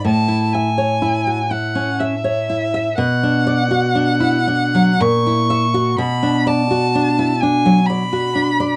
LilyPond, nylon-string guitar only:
\new Staff \with { instrumentName = "Nylon-string guitar" } { \time 3/4 \key b \dorian \tempo 4 = 62 a,16 e'16 e''16 cis''16 e'16 fis'16 e'16 cis'16 e''16 cis''16 e'16 e''16 | b,16 d'16 d''16 fis'16 d'16 e'16 d'16 fis16 ais,16 e'16 e''16 fis'16 | b,16 d'16 d''16 fis'16 d'16 e'16 d'16 fis16 d''16 fis'16 d'16 d''16 | }